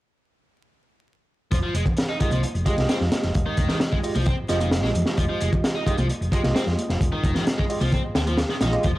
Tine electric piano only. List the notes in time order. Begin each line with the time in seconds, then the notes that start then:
2.20 G#3 F4 G4 D#5
2.66 G#3 F4 G4 D#5
4.03 G#3 F4 G4 D#5
4.49 G#3 F4 G4 D#5
5.86 G#3 F4 G4 D#5
6.32 G#3 F4 G4 D#5
7.70 G#3 F4 G4 D#5
8.61 G#3 F4 G4 D#5
8.73 G#3 F4 G4 D#5